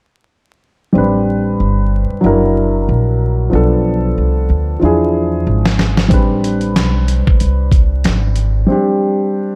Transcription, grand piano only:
0.93 2.20 G3 medium
0.93 2.21 C4 medium
0.93 2.21 D4 medium
0.98 2.23 B4 medium
2.21 3.49 F#3 medium
2.21 3.50 D4 medium
2.21 3.51 E4 medium
2.26 3.52 A#4 medium
3.50 4.78 F3 medium
3.50 4.79 B3 medium
3.50 4.80 D4 medium
3.55 4.81 A4 medium
4.79 6.07 F3 medium
4.79 6.08 D4 medium
4.79 6.09 E4 medium
4.85 6.10 G#4 medium
6.08 8.64 G3 medium
6.08 8.65 C4 medium
6.08 8.65 D4 medium
6.14 8.66 B4 medium
8.66 9.55 G3 medium
8.66 9.55 C4 medium
8.66 9.55 D4 medium
8.72 9.55 G4 medium

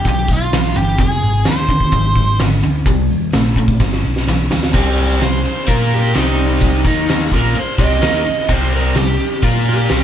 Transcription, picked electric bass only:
0.05 0.27 B1 medium
0.28 0.51 B1 medium
0.52 0.75 B1 medium
0.76 0.98 G1 medium
0.98 1.21 F1 medium
1.22 1.45 G#1 medium
1.47 1.90 D#2 loud
1.92 2.15 G#1 medium
2.15 2.38 G#1 medium
2.40 2.62 G#1 medium
2.63 2.85 D2 medium
2.86 3.08 C2 medium
3.11 3.33 D#2 medium
3.34 3.77 A#1 medium
3.80 4.02 G1 medium
4.04 4.26 B1 medium
4.28 4.50 B1 medium
4.51 4.73 D2 medium
4.74 5.18 C2 medium
5.21 5.43 C2 medium
5.68 6.12 A#2 medium
6.16 6.82 C2 medium
6.85 7.29 D#2 medium
7.31 7.54 A#1 medium
7.57 muted picked electric bass stroke soft
7.79 8.01 C2 medium
8.02 8.25 D#2 medium
8.26 muted picked electric bass stroke soft
8.49 8.93 C2 medium
8.95 9.18 C2 medium
9.42 9.87 A#2 medium
9.90 10.04 C2 medium

